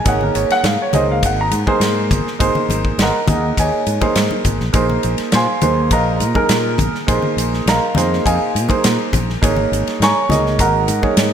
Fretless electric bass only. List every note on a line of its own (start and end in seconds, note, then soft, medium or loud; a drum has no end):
0.06 0.29 G#1 medium
0.35 0.47 G#1 medium
0.50 muted fretless electric bass stroke soft
0.63 0.76 G#2 medium
0.93 1.24 C#2 medium
1.23 1.53 G#1 loud
1.51 1.64 G#2 medium
1.80 2.12 G#2 medium
2.11 2.23 G#1 medium
2.40 2.52 G#1 medium
2.69 2.92 G#1 medium
2.98 3.10 G#1 medium
3.28 3.51 D#2 medium
3.58 3.69 D#2 medium
3.73 muted fretless electric bass stroke soft
3.87 3.98 G#2 medium
4.16 4.27 G#2 medium
4.45 4.59 G#1 medium
4.61 4.73 A#1 medium
4.74 4.97 A#1 medium
5.04 5.16 A#1 medium
5.33 5.45 A#2 medium
5.62 5.92 D#2 medium
5.91 6.22 A#1 loud
6.20 6.32 A#2 medium
6.49 6.80 A#2 medium
6.79 6.90 A#1 medium
6.93 muted fretless electric bass stroke soft
7.09 7.20 A#1 loud
7.23 muted fretless electric bass stroke soft
7.37 7.59 A#1 medium
7.66 7.78 A#1 medium
7.96 8.18 F2 medium
8.26 8.37 F2 medium
8.41 muted fretless electric bass stroke soft
8.55 8.66 A#2 medium
8.85 8.96 A#2 medium
9.13 9.36 A#1 medium
9.42 9.65 G#1 medium
9.72 9.83 G#1 medium
9.87 muted fretless electric bass stroke soft
10.00 10.12 G#2 loud
10.29 10.60 C#2 medium
10.59 10.90 G#1 loud
10.88 11.00 G#2 medium
11.17 11.33 G#2 medium